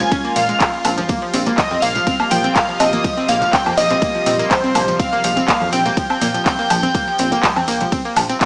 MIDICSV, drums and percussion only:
0, 0, Header, 1, 2, 480
1, 0, Start_track
1, 0, Tempo, 487805
1, 1075, Time_signature, 4, 2, 24, 8
1, 8320, End_track
2, 0, Start_track
2, 0, Title_t, "Drums"
2, 0, Note_on_c, 9, 54, 59
2, 2, Note_on_c, 9, 42, 52
2, 2, Note_on_c, 9, 64, 100
2, 98, Note_off_c, 9, 54, 0
2, 100, Note_off_c, 9, 42, 0
2, 100, Note_off_c, 9, 64, 0
2, 113, Note_on_c, 9, 54, 43
2, 114, Note_on_c, 9, 36, 127
2, 114, Note_on_c, 9, 42, 52
2, 114, Note_on_c, 9, 51, 67
2, 211, Note_off_c, 9, 54, 0
2, 212, Note_off_c, 9, 42, 0
2, 212, Note_off_c, 9, 51, 0
2, 213, Note_off_c, 9, 36, 0
2, 242, Note_on_c, 9, 42, 26
2, 340, Note_off_c, 9, 42, 0
2, 353, Note_on_c, 9, 54, 93
2, 354, Note_on_c, 9, 46, 111
2, 358, Note_on_c, 9, 63, 62
2, 452, Note_off_c, 9, 46, 0
2, 452, Note_off_c, 9, 54, 0
2, 457, Note_off_c, 9, 63, 0
2, 481, Note_on_c, 9, 42, 52
2, 482, Note_on_c, 9, 54, 49
2, 580, Note_off_c, 9, 42, 0
2, 580, Note_off_c, 9, 54, 0
2, 590, Note_on_c, 9, 54, 44
2, 594, Note_on_c, 9, 36, 127
2, 594, Note_on_c, 9, 39, 124
2, 594, Note_on_c, 9, 42, 50
2, 594, Note_on_c, 9, 51, 67
2, 689, Note_off_c, 9, 54, 0
2, 693, Note_off_c, 9, 36, 0
2, 693, Note_off_c, 9, 39, 0
2, 693, Note_off_c, 9, 42, 0
2, 693, Note_off_c, 9, 51, 0
2, 721, Note_on_c, 9, 42, 27
2, 820, Note_off_c, 9, 42, 0
2, 832, Note_on_c, 9, 54, 100
2, 834, Note_on_c, 9, 46, 114
2, 834, Note_on_c, 9, 76, 69
2, 931, Note_off_c, 9, 54, 0
2, 932, Note_off_c, 9, 46, 0
2, 932, Note_off_c, 9, 76, 0
2, 957, Note_on_c, 9, 54, 51
2, 961, Note_on_c, 9, 42, 50
2, 966, Note_on_c, 9, 63, 85
2, 1056, Note_off_c, 9, 54, 0
2, 1059, Note_off_c, 9, 42, 0
2, 1065, Note_off_c, 9, 63, 0
2, 1068, Note_on_c, 9, 54, 37
2, 1074, Note_on_c, 9, 36, 118
2, 1074, Note_on_c, 9, 42, 52
2, 1074, Note_on_c, 9, 51, 69
2, 1167, Note_off_c, 9, 54, 0
2, 1172, Note_off_c, 9, 42, 0
2, 1172, Note_off_c, 9, 51, 0
2, 1173, Note_off_c, 9, 36, 0
2, 1201, Note_on_c, 9, 42, 26
2, 1300, Note_off_c, 9, 42, 0
2, 1314, Note_on_c, 9, 46, 108
2, 1315, Note_on_c, 9, 54, 90
2, 1413, Note_off_c, 9, 46, 0
2, 1413, Note_off_c, 9, 54, 0
2, 1436, Note_on_c, 9, 54, 48
2, 1442, Note_on_c, 9, 42, 54
2, 1442, Note_on_c, 9, 64, 89
2, 1535, Note_off_c, 9, 54, 0
2, 1540, Note_off_c, 9, 42, 0
2, 1540, Note_off_c, 9, 64, 0
2, 1554, Note_on_c, 9, 39, 122
2, 1554, Note_on_c, 9, 42, 52
2, 1554, Note_on_c, 9, 51, 71
2, 1555, Note_on_c, 9, 36, 127
2, 1557, Note_on_c, 9, 54, 43
2, 1652, Note_off_c, 9, 39, 0
2, 1652, Note_off_c, 9, 42, 0
2, 1652, Note_off_c, 9, 51, 0
2, 1653, Note_off_c, 9, 36, 0
2, 1655, Note_off_c, 9, 54, 0
2, 1680, Note_on_c, 9, 63, 83
2, 1682, Note_on_c, 9, 42, 27
2, 1779, Note_off_c, 9, 63, 0
2, 1780, Note_off_c, 9, 42, 0
2, 1792, Note_on_c, 9, 54, 84
2, 1794, Note_on_c, 9, 46, 112
2, 1890, Note_off_c, 9, 54, 0
2, 1893, Note_off_c, 9, 46, 0
2, 1920, Note_on_c, 9, 64, 97
2, 1921, Note_on_c, 9, 42, 52
2, 1925, Note_on_c, 9, 54, 58
2, 2019, Note_off_c, 9, 42, 0
2, 2019, Note_off_c, 9, 64, 0
2, 2023, Note_off_c, 9, 54, 0
2, 2034, Note_on_c, 9, 42, 55
2, 2034, Note_on_c, 9, 51, 75
2, 2035, Note_on_c, 9, 36, 116
2, 2038, Note_on_c, 9, 54, 39
2, 2133, Note_off_c, 9, 36, 0
2, 2133, Note_off_c, 9, 42, 0
2, 2133, Note_off_c, 9, 51, 0
2, 2137, Note_off_c, 9, 54, 0
2, 2162, Note_on_c, 9, 42, 27
2, 2162, Note_on_c, 9, 76, 67
2, 2260, Note_off_c, 9, 42, 0
2, 2260, Note_off_c, 9, 76, 0
2, 2271, Note_on_c, 9, 54, 96
2, 2275, Note_on_c, 9, 46, 113
2, 2279, Note_on_c, 9, 63, 72
2, 2369, Note_off_c, 9, 54, 0
2, 2373, Note_off_c, 9, 46, 0
2, 2377, Note_off_c, 9, 63, 0
2, 2401, Note_on_c, 9, 54, 49
2, 2402, Note_on_c, 9, 42, 52
2, 2500, Note_off_c, 9, 42, 0
2, 2500, Note_off_c, 9, 54, 0
2, 2515, Note_on_c, 9, 36, 119
2, 2515, Note_on_c, 9, 39, 120
2, 2515, Note_on_c, 9, 42, 50
2, 2515, Note_on_c, 9, 51, 69
2, 2520, Note_on_c, 9, 54, 43
2, 2613, Note_off_c, 9, 36, 0
2, 2613, Note_off_c, 9, 39, 0
2, 2613, Note_off_c, 9, 42, 0
2, 2613, Note_off_c, 9, 51, 0
2, 2618, Note_off_c, 9, 54, 0
2, 2643, Note_on_c, 9, 42, 28
2, 2741, Note_off_c, 9, 42, 0
2, 2753, Note_on_c, 9, 54, 91
2, 2756, Note_on_c, 9, 46, 112
2, 2756, Note_on_c, 9, 76, 71
2, 2851, Note_off_c, 9, 54, 0
2, 2854, Note_off_c, 9, 46, 0
2, 2854, Note_off_c, 9, 76, 0
2, 2881, Note_on_c, 9, 54, 49
2, 2883, Note_on_c, 9, 42, 51
2, 2885, Note_on_c, 9, 63, 88
2, 2980, Note_off_c, 9, 54, 0
2, 2981, Note_off_c, 9, 42, 0
2, 2983, Note_off_c, 9, 63, 0
2, 2995, Note_on_c, 9, 36, 115
2, 2995, Note_on_c, 9, 42, 54
2, 2995, Note_on_c, 9, 51, 69
2, 2995, Note_on_c, 9, 54, 42
2, 3093, Note_off_c, 9, 36, 0
2, 3093, Note_off_c, 9, 42, 0
2, 3093, Note_off_c, 9, 51, 0
2, 3093, Note_off_c, 9, 54, 0
2, 3122, Note_on_c, 9, 42, 28
2, 3220, Note_off_c, 9, 42, 0
2, 3231, Note_on_c, 9, 54, 88
2, 3235, Note_on_c, 9, 46, 105
2, 3329, Note_off_c, 9, 54, 0
2, 3333, Note_off_c, 9, 46, 0
2, 3356, Note_on_c, 9, 64, 99
2, 3362, Note_on_c, 9, 54, 51
2, 3363, Note_on_c, 9, 42, 57
2, 3454, Note_off_c, 9, 64, 0
2, 3460, Note_off_c, 9, 54, 0
2, 3461, Note_off_c, 9, 42, 0
2, 3475, Note_on_c, 9, 36, 119
2, 3475, Note_on_c, 9, 39, 121
2, 3475, Note_on_c, 9, 42, 56
2, 3475, Note_on_c, 9, 51, 72
2, 3475, Note_on_c, 9, 54, 35
2, 3573, Note_off_c, 9, 36, 0
2, 3573, Note_off_c, 9, 39, 0
2, 3573, Note_off_c, 9, 54, 0
2, 3574, Note_off_c, 9, 42, 0
2, 3574, Note_off_c, 9, 51, 0
2, 3601, Note_on_c, 9, 63, 79
2, 3602, Note_on_c, 9, 42, 27
2, 3602, Note_on_c, 9, 76, 64
2, 3699, Note_off_c, 9, 63, 0
2, 3701, Note_off_c, 9, 42, 0
2, 3701, Note_off_c, 9, 76, 0
2, 3713, Note_on_c, 9, 54, 82
2, 3715, Note_on_c, 9, 46, 101
2, 3812, Note_off_c, 9, 54, 0
2, 3813, Note_off_c, 9, 46, 0
2, 3835, Note_on_c, 9, 54, 49
2, 3843, Note_on_c, 9, 42, 55
2, 3848, Note_on_c, 9, 64, 94
2, 3934, Note_off_c, 9, 54, 0
2, 3941, Note_off_c, 9, 42, 0
2, 3947, Note_off_c, 9, 64, 0
2, 3950, Note_on_c, 9, 54, 42
2, 3955, Note_on_c, 9, 36, 120
2, 3955, Note_on_c, 9, 42, 54
2, 3955, Note_on_c, 9, 51, 73
2, 4049, Note_off_c, 9, 54, 0
2, 4053, Note_off_c, 9, 36, 0
2, 4054, Note_off_c, 9, 42, 0
2, 4054, Note_off_c, 9, 51, 0
2, 4082, Note_on_c, 9, 42, 26
2, 4181, Note_off_c, 9, 42, 0
2, 4193, Note_on_c, 9, 63, 67
2, 4195, Note_on_c, 9, 46, 106
2, 4196, Note_on_c, 9, 54, 92
2, 4291, Note_off_c, 9, 63, 0
2, 4293, Note_off_c, 9, 46, 0
2, 4295, Note_off_c, 9, 54, 0
2, 4323, Note_on_c, 9, 42, 55
2, 4323, Note_on_c, 9, 54, 55
2, 4421, Note_off_c, 9, 42, 0
2, 4421, Note_off_c, 9, 54, 0
2, 4435, Note_on_c, 9, 36, 115
2, 4435, Note_on_c, 9, 39, 114
2, 4436, Note_on_c, 9, 42, 54
2, 4436, Note_on_c, 9, 51, 68
2, 4437, Note_on_c, 9, 54, 38
2, 4533, Note_off_c, 9, 36, 0
2, 4534, Note_off_c, 9, 39, 0
2, 4534, Note_off_c, 9, 42, 0
2, 4534, Note_off_c, 9, 51, 0
2, 4536, Note_off_c, 9, 54, 0
2, 4563, Note_on_c, 9, 42, 28
2, 4661, Note_off_c, 9, 42, 0
2, 4676, Note_on_c, 9, 46, 111
2, 4676, Note_on_c, 9, 54, 100
2, 4676, Note_on_c, 9, 76, 75
2, 4774, Note_off_c, 9, 46, 0
2, 4774, Note_off_c, 9, 54, 0
2, 4774, Note_off_c, 9, 76, 0
2, 4801, Note_on_c, 9, 63, 86
2, 4803, Note_on_c, 9, 42, 54
2, 4804, Note_on_c, 9, 54, 53
2, 4900, Note_off_c, 9, 63, 0
2, 4901, Note_off_c, 9, 42, 0
2, 4903, Note_off_c, 9, 54, 0
2, 4915, Note_on_c, 9, 36, 112
2, 4916, Note_on_c, 9, 42, 54
2, 4916, Note_on_c, 9, 51, 70
2, 4920, Note_on_c, 9, 54, 38
2, 5014, Note_off_c, 9, 36, 0
2, 5015, Note_off_c, 9, 42, 0
2, 5015, Note_off_c, 9, 51, 0
2, 5018, Note_off_c, 9, 54, 0
2, 5043, Note_on_c, 9, 42, 28
2, 5142, Note_off_c, 9, 42, 0
2, 5154, Note_on_c, 9, 54, 98
2, 5156, Note_on_c, 9, 46, 108
2, 5252, Note_off_c, 9, 54, 0
2, 5255, Note_off_c, 9, 46, 0
2, 5276, Note_on_c, 9, 64, 84
2, 5281, Note_on_c, 9, 54, 53
2, 5283, Note_on_c, 9, 42, 57
2, 5374, Note_off_c, 9, 64, 0
2, 5379, Note_off_c, 9, 54, 0
2, 5381, Note_off_c, 9, 42, 0
2, 5395, Note_on_c, 9, 36, 119
2, 5396, Note_on_c, 9, 39, 122
2, 5397, Note_on_c, 9, 42, 59
2, 5397, Note_on_c, 9, 51, 77
2, 5398, Note_on_c, 9, 54, 39
2, 5494, Note_off_c, 9, 36, 0
2, 5495, Note_off_c, 9, 39, 0
2, 5495, Note_off_c, 9, 42, 0
2, 5495, Note_off_c, 9, 51, 0
2, 5496, Note_off_c, 9, 54, 0
2, 5522, Note_on_c, 9, 63, 87
2, 5523, Note_on_c, 9, 42, 29
2, 5621, Note_off_c, 9, 42, 0
2, 5621, Note_off_c, 9, 63, 0
2, 5633, Note_on_c, 9, 54, 82
2, 5636, Note_on_c, 9, 46, 109
2, 5732, Note_off_c, 9, 54, 0
2, 5734, Note_off_c, 9, 46, 0
2, 5762, Note_on_c, 9, 54, 48
2, 5763, Note_on_c, 9, 42, 59
2, 5764, Note_on_c, 9, 64, 82
2, 5861, Note_off_c, 9, 42, 0
2, 5861, Note_off_c, 9, 54, 0
2, 5862, Note_off_c, 9, 64, 0
2, 5874, Note_on_c, 9, 54, 37
2, 5875, Note_on_c, 9, 36, 117
2, 5875, Note_on_c, 9, 42, 54
2, 5875, Note_on_c, 9, 51, 73
2, 5972, Note_off_c, 9, 54, 0
2, 5973, Note_off_c, 9, 36, 0
2, 5974, Note_off_c, 9, 42, 0
2, 5974, Note_off_c, 9, 51, 0
2, 6003, Note_on_c, 9, 42, 29
2, 6003, Note_on_c, 9, 76, 64
2, 6101, Note_off_c, 9, 42, 0
2, 6101, Note_off_c, 9, 76, 0
2, 6115, Note_on_c, 9, 46, 103
2, 6117, Note_on_c, 9, 54, 97
2, 6119, Note_on_c, 9, 63, 72
2, 6214, Note_off_c, 9, 46, 0
2, 6215, Note_off_c, 9, 54, 0
2, 6218, Note_off_c, 9, 63, 0
2, 6243, Note_on_c, 9, 42, 59
2, 6246, Note_on_c, 9, 54, 47
2, 6341, Note_off_c, 9, 42, 0
2, 6344, Note_off_c, 9, 54, 0
2, 6355, Note_on_c, 9, 36, 120
2, 6355, Note_on_c, 9, 39, 116
2, 6355, Note_on_c, 9, 42, 53
2, 6355, Note_on_c, 9, 51, 75
2, 6453, Note_off_c, 9, 36, 0
2, 6454, Note_off_c, 9, 39, 0
2, 6454, Note_off_c, 9, 42, 0
2, 6454, Note_off_c, 9, 51, 0
2, 6483, Note_on_c, 9, 42, 29
2, 6581, Note_off_c, 9, 42, 0
2, 6595, Note_on_c, 9, 46, 108
2, 6595, Note_on_c, 9, 54, 83
2, 6595, Note_on_c, 9, 76, 70
2, 6694, Note_off_c, 9, 46, 0
2, 6694, Note_off_c, 9, 54, 0
2, 6694, Note_off_c, 9, 76, 0
2, 6715, Note_on_c, 9, 63, 83
2, 6720, Note_on_c, 9, 54, 50
2, 6723, Note_on_c, 9, 42, 56
2, 6814, Note_off_c, 9, 63, 0
2, 6819, Note_off_c, 9, 54, 0
2, 6821, Note_off_c, 9, 42, 0
2, 6830, Note_on_c, 9, 54, 39
2, 6835, Note_on_c, 9, 36, 119
2, 6835, Note_on_c, 9, 42, 57
2, 6835, Note_on_c, 9, 51, 67
2, 6928, Note_off_c, 9, 54, 0
2, 6933, Note_off_c, 9, 36, 0
2, 6934, Note_off_c, 9, 42, 0
2, 6934, Note_off_c, 9, 51, 0
2, 6963, Note_on_c, 9, 42, 29
2, 7061, Note_off_c, 9, 42, 0
2, 7069, Note_on_c, 9, 54, 92
2, 7075, Note_on_c, 9, 46, 105
2, 7167, Note_off_c, 9, 54, 0
2, 7173, Note_off_c, 9, 46, 0
2, 7196, Note_on_c, 9, 64, 97
2, 7202, Note_on_c, 9, 42, 57
2, 7204, Note_on_c, 9, 54, 50
2, 7295, Note_off_c, 9, 64, 0
2, 7301, Note_off_c, 9, 42, 0
2, 7303, Note_off_c, 9, 54, 0
2, 7314, Note_on_c, 9, 54, 39
2, 7315, Note_on_c, 9, 36, 116
2, 7315, Note_on_c, 9, 39, 127
2, 7315, Note_on_c, 9, 42, 56
2, 7315, Note_on_c, 9, 51, 74
2, 7413, Note_off_c, 9, 36, 0
2, 7413, Note_off_c, 9, 39, 0
2, 7413, Note_off_c, 9, 54, 0
2, 7414, Note_off_c, 9, 42, 0
2, 7414, Note_off_c, 9, 51, 0
2, 7441, Note_on_c, 9, 63, 87
2, 7442, Note_on_c, 9, 42, 30
2, 7442, Note_on_c, 9, 76, 61
2, 7540, Note_off_c, 9, 63, 0
2, 7541, Note_off_c, 9, 42, 0
2, 7541, Note_off_c, 9, 76, 0
2, 7556, Note_on_c, 9, 46, 108
2, 7562, Note_on_c, 9, 54, 82
2, 7654, Note_off_c, 9, 46, 0
2, 7660, Note_off_c, 9, 54, 0
2, 7678, Note_on_c, 9, 54, 52
2, 7682, Note_on_c, 9, 64, 88
2, 7683, Note_on_c, 9, 42, 57
2, 7776, Note_off_c, 9, 54, 0
2, 7781, Note_off_c, 9, 42, 0
2, 7781, Note_off_c, 9, 64, 0
2, 7795, Note_on_c, 9, 36, 118
2, 7795, Note_on_c, 9, 42, 58
2, 7795, Note_on_c, 9, 51, 72
2, 7795, Note_on_c, 9, 54, 39
2, 7893, Note_off_c, 9, 36, 0
2, 7893, Note_off_c, 9, 42, 0
2, 7893, Note_off_c, 9, 51, 0
2, 7894, Note_off_c, 9, 54, 0
2, 7923, Note_on_c, 9, 42, 28
2, 8021, Note_off_c, 9, 42, 0
2, 8030, Note_on_c, 9, 54, 86
2, 8031, Note_on_c, 9, 63, 69
2, 8035, Note_on_c, 9, 46, 105
2, 8035, Note_on_c, 9, 76, 87
2, 8129, Note_off_c, 9, 54, 0
2, 8130, Note_off_c, 9, 63, 0
2, 8133, Note_off_c, 9, 46, 0
2, 8133, Note_off_c, 9, 76, 0
2, 8161, Note_on_c, 9, 54, 56
2, 8162, Note_on_c, 9, 42, 58
2, 8260, Note_off_c, 9, 54, 0
2, 8261, Note_off_c, 9, 42, 0
2, 8273, Note_on_c, 9, 54, 37
2, 8275, Note_on_c, 9, 36, 113
2, 8275, Note_on_c, 9, 39, 127
2, 8276, Note_on_c, 9, 42, 58
2, 8276, Note_on_c, 9, 51, 73
2, 8320, Note_off_c, 9, 36, 0
2, 8320, Note_off_c, 9, 39, 0
2, 8320, Note_off_c, 9, 42, 0
2, 8320, Note_off_c, 9, 51, 0
2, 8320, Note_off_c, 9, 54, 0
2, 8320, End_track
0, 0, End_of_file